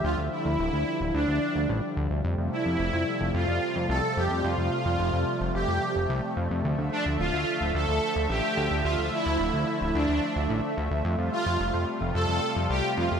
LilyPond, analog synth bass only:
\new Staff \with { instrumentName = "Analog synth bass" } { \clef bass \time 4/4 \key f \major \tempo 4 = 109 d,16 d,16 r16 d,16 d,,16 d,16 r16 d,,16 d,16 d,16 r16 d,16 a,,16 r16 d,16 d,16 | f,16 f,16 r16 f,16 f,,16 f,16 r16 f,,16 f,16 f,16 r16 f,16 c,16 r16 f,16 f,16 | f,16 f,16 r16 f,16 f,,16 f,16 r16 f,,16 f,,16 f,16 r16 f,,16 c,16 r16 f,16 f,16 | d,16 d,16 r16 d,16 d,,16 d,16 r16 d,,16 d,16 d,16 r16 d,16 a,,16 r16 d,16 d,16 |
d,16 d,16 r16 d,16 d,,16 d,16 r16 d,,16 d,16 d,16 r16 d,16 a,,16 r16 d,16 d,16 | f,16 f,16 r16 f,16 f,,16 f,16 r16 f,,16 f,16 f,16 r16 f,16 c,16 r16 f,16 f,16 | }